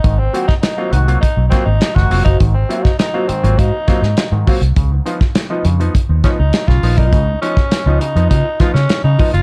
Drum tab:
HH |x-x-x-xxx-x-x-ox|x-x-x-xxx-x-x-ox|x-x-x-xxx-x-x-ox|x-x-x-xxx-x-x-ox|
SD |---oo-----o-oo--|---oo-----ooo---|---oo-----o-oo--|---oo-----ooo---|
BD |o--o----o-o--o-o|o--o----o-o---o-|o--o----o-o--o-o|o--o----o-o---o-|